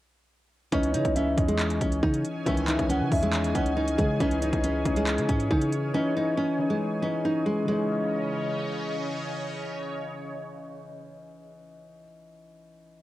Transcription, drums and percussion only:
0.72 kick loud
0.72 closed hi-hat medium
0.83 closed hi-hat medium
0.94 closed hi-hat medium
1.05 kick medium
1.05 closed hi-hat medium
1.16 closed hi-hat medium
1.38 kick medium
1.38 closed hi-hat medium
1.49 closed hi-hat medium
1.59 clap loud
1.59 closed hi-hat medium
1.70 closed hi-hat medium
1.81 kick loud
1.81 closed hi-hat medium
1.92 closed hi-hat medium
2.03 kick loud
2.14 closed hi-hat medium
2.25 closed hi-hat medium
2.46 kick loud
2.46 closed hi-hat medium
2.57 closed hi-hat medium
2.68 clap loud
2.68 closed hi-hat medium
2.79 kick medium
2.79 closed hi-hat medium
2.90 closed hi-hat medium
3.12 kick medium
3.12 open hi-hat medium
3.22 closed hi-hat medium
3.33 clap loud
3.33 closed hi-hat medium
3.44 closed hi-hat medium
3.55 kick loud
3.55 closed hi-hat medium
3.66 closed hi-hat medium
3.88 closed hi-hat medium
3.98 kick loud
3.98 closed hi-hat medium
4.20 kick loud
4.20 closed hi-hat medium
4.31 closed hi-hat medium
4.42 closed hi-hat medium
4.53 kick loud
4.53 closed hi-hat medium
4.64 closed hi-hat medium
4.85 kick medium
4.85 closed hi-hat medium
4.96 closed hi-hat medium
5.07 clap loud
5.07 closed hi-hat medium
5.18 closed hi-hat medium
5.29 kick loud
5.29 closed hi-hat medium
5.40 closed hi-hat medium
5.51 kick loud
5.61 closed hi-hat medium
5.72 closed hi-hat medium

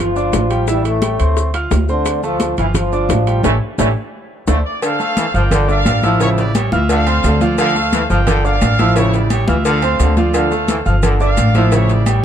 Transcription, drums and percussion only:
0.16 high conga soft
0.16 maracas soft
0.33 high bongo medium
0.33 low bongo medium
0.33 high conga medium
0.33 high timbale medium
0.33 low timbale medium
0.33 maracas medium
0.50 high timbale medium
0.50 maracas soft
0.67 high bongo medium
0.67 high conga soft
0.67 maracas medium
0.85 high bongo soft
0.85 high conga soft
0.85 high timbale medium
0.85 maracas soft
1.02 high bongo medium
1.02 high conga medium
1.02 high timbale medium
1.02 low timbale medium
1.02 maracas medium
1.19 high bongo soft
1.19 high conga soft
1.19 high timbale medium
1.19 maracas soft
1.36 high bongo medium
1.36 high conga soft
1.36 maracas medium
1.54 high conga soft
1.54 high timbale medium
1.54 maracas soft
1.71 high bongo medium
1.71 low bongo medium
1.71 high conga medium
1.71 high timbale medium
1.71 low timbale medium
1.71 maracas medium
1.88 high bongo soft
1.88 high conga soft
1.88 maracas soft
2.05 high bongo medium
2.05 high conga soft
2.05 high timbale medium
2.05 maracas medium
2.23 high conga soft
2.23 maracas soft
2.40 high bongo medium
2.40 high conga medium
2.40 high timbale medium
2.40 low timbale medium
2.40 maracas medium
2.57 high conga soft
2.57 high timbale medium
2.57 maracas soft
2.74 high bongo medium
2.74 high conga soft
2.74 low conga medium
2.74 high timbale medium
2.74 maracas medium
2.92 high conga soft
2.92 maracas soft
3.09 high bongo medium
3.09 low bongo medium
3.09 high conga medium
3.09 high timbale medium
3.09 low timbale medium
3.09 maracas medium
3.27 high timbale medium
3.27 maracas soft
3.43 low bongo loud
3.43 high conga medium
3.43 high timbale loud
3.43 maracas medium
3.78 low bongo medium
3.78 high conga medium
3.78 high timbale loud
3.78 maracas medium
4.48 low bongo loud
4.48 high conga loud
4.48 high timbale medium
4.48 maracas medium
4.82 cowbell loud
4.82 high conga soft
4.82 low agogo loud
4.82 maracas medium
5.00 high conga soft
5.00 maracas soft
5.17 cowbell medium
5.17 high conga medium
5.17 low agogo medium
5.17 maracas medium
5.34 high conga soft
5.34 maracas soft
5.51 cowbell loud
5.51 high conga soft
5.51 low conga medium
5.51 low agogo loud
5.51 maracas medium
5.68 high conga soft
5.68 maracas soft
5.86 cowbell medium
5.86 high conga medium
5.86 low timbale medium
5.86 low agogo loud
5.86 maracas medium
6.03 cowbell medium
6.03 high conga medium
6.03 maracas soft
6.20 cowbell loud
6.20 high conga soft
6.20 low agogo medium
6.20 maracas medium
6.37 cowbell medium
6.37 high conga soft
6.37 maracas soft
6.55 cowbell medium
6.55 high conga medium
6.55 low agogo loud
6.55 maracas medium
6.72 high conga loud
6.72 maracas soft
6.89 cowbell loud
6.89 high conga soft
6.89 low agogo medium
6.89 maracas medium
7.07 high conga soft
7.07 low agogo loud
7.07 maracas soft
7.24 cowbell medium
7.24 high conga soft
7.24 low timbale medium
7.24 low agogo medium
7.24 maracas medium
7.41 cowbell medium
7.41 high conga medium
7.41 maracas soft
7.58 cowbell loud
7.58 high conga soft
7.58 low agogo loud
7.58 maracas medium
7.75 high conga soft
7.75 maracas soft
7.93 cowbell medium
7.93 high conga medium
7.93 low agogo medium
7.93 maracas medium
8.10 high conga soft
8.10 maracas soft
8.27 cowbell loud
8.27 high conga soft
8.27 low conga medium
8.27 low agogo loud
8.27 maracas medium
8.45 high conga soft
8.45 maracas soft
8.61 cowbell medium
8.61 high conga medium
8.61 low timbale medium
8.61 low agogo loud
8.61 maracas medium
8.79 cowbell medium
8.79 high conga medium
8.79 maracas soft
8.96 cowbell loud
8.96 high conga soft
8.96 low agogo medium
8.96 maracas medium
9.13 cowbell medium
9.13 high conga soft
9.13 maracas soft
9.30 cowbell medium
9.30 high conga medium
9.30 low agogo loud
9.30 maracas medium
9.48 high conga loud
9.48 maracas soft
9.65 cowbell loud
9.65 high conga soft
9.65 low agogo medium
9.65 maracas medium
9.82 high conga soft
9.82 low agogo loud
9.82 maracas soft
10.00 cowbell medium
10.00 high conga soft
10.00 low timbale medium
10.00 low agogo medium
10.00 maracas medium
10.17 cowbell medium
10.17 high conga medium
10.17 maracas soft
10.34 cowbell loud
10.34 high conga soft
10.34 low agogo loud
10.34 maracas medium
10.51 high conga soft
10.51 maracas soft
10.68 cowbell medium
10.68 high conga medium
10.68 low agogo medium
10.68 maracas medium
10.86 high conga soft
10.86 maracas soft
11.03 cowbell loud
11.03 high conga soft
11.03 low conga medium
11.03 low agogo loud
11.03 maracas medium
11.20 high conga soft
11.20 maracas soft
11.37 cowbell medium
11.37 high conga medium
11.37 low agogo loud
11.37 maracas medium
11.55 cowbell medium
11.55 high conga medium
11.55 maracas soft
11.72 cowbell loud
11.72 low agogo medium
11.72 maracas medium
11.89 cowbell medium
11.89 high conga soft
11.89 maracas soft
12.06 cowbell medium
12.06 high conga medium
12.06 low agogo loud
12.06 maracas medium

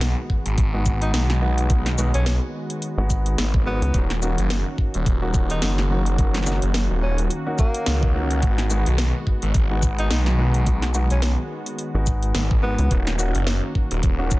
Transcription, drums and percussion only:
0.01 snare loud
0.01 closed hi-hat medium
0.30 kick medium
0.46 closed hi-hat medium
0.58 kick loud
0.58 closed hi-hat medium
0.86 kick loud
0.86 shaker medium
1.02 closed hi-hat medium
1.14 snare loud
1.14 closed hi-hat medium
1.30 snare medium
1.58 closed hi-hat medium
1.70 kick loud
1.70 closed hi-hat medium
1.86 snare medium
1.86 closed hi-hat soft
1.98 shaker medium
2.14 closed hi-hat medium
2.26 snare loud
2.26 closed hi-hat medium
2.70 closed hi-hat medium
2.82 closed hi-hat medium
3.10 kick loud
3.10 shaker medium
3.26 closed hi-hat medium
3.38 snare loud
3.38 closed hi-hat medium
3.54 kick loud
3.82 closed hi-hat medium
3.94 kick loud
3.94 closed hi-hat medium
4.10 snare medium
4.10 closed hi-hat soft
4.22 shaker medium
4.38 closed hi-hat medium
4.50 snare loud
4.50 closed hi-hat medium
4.78 kick medium
4.94 closed hi-hat soft
5.06 kick loud
5.06 closed hi-hat medium
5.34 kick loud
5.34 shaker medium
5.50 closed hi-hat medium
5.62 snare loud
5.62 closed hi-hat medium
5.78 snare medium
6.06 closed hi-hat medium
6.18 kick loud
6.18 closed hi-hat medium
6.34 snare medium
6.34 closed hi-hat soft
6.37 snare soft
6.43 snare soft
6.47 snare soft
6.47 shaker medium
6.52 snare soft
6.56 snare soft
6.62 closed hi-hat medium
6.74 snare loud
6.74 closed hi-hat medium
7.18 closed hi-hat medium
7.30 closed hi-hat medium
7.58 kick loud
7.58 shaker medium
7.74 closed hi-hat medium
7.86 snare loud
7.86 closed hi-hat medium
8.03 kick loud
8.31 closed hi-hat medium
8.42 kick loud
8.42 closed hi-hat medium
8.58 snare medium
8.58 closed hi-hat soft
8.70 shaker medium
8.86 closed hi-hat medium
8.98 snare loud
8.98 closed hi-hat medium
9.27 kick medium
9.42 closed hi-hat soft
9.54 kick loud
9.54 closed hi-hat medium
9.83 kick loud
9.83 shaker medium
9.98 closed hi-hat soft
10.11 snare loud
10.11 closed hi-hat medium
10.26 snare medium
10.54 closed hi-hat soft
10.66 kick loud
10.66 closed hi-hat medium
10.82 snare medium
10.82 closed hi-hat soft
10.94 shaker medium
11.10 closed hi-hat medium
11.22 snare loud
11.22 closed hi-hat medium
11.66 closed hi-hat medium
11.79 closed hi-hat medium
12.06 kick loud
12.06 shaker medium
12.23 closed hi-hat soft
12.35 snare loud
12.35 closed hi-hat medium
12.51 kick loud
12.79 closed hi-hat soft
12.91 kick loud
12.91 closed hi-hat medium
13.07 snare medium
13.07 closed hi-hat soft
13.19 shaker medium
13.35 closed hi-hat medium
13.47 snare loud
13.75 kick medium
13.91 closed hi-hat medium
14.03 kick loud
14.03 closed hi-hat medium
14.31 kick loud
14.31 shaker medium

